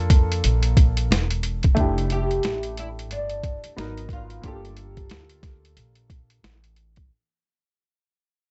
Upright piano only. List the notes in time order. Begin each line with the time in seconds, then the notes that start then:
Already playing: A#3 D4 F4 A4
1.75 A3 D4 E4
1.80 G4
3.76 F#3 B3 D#4 A#4
4.42 A#3 D4 F4
4.47 A4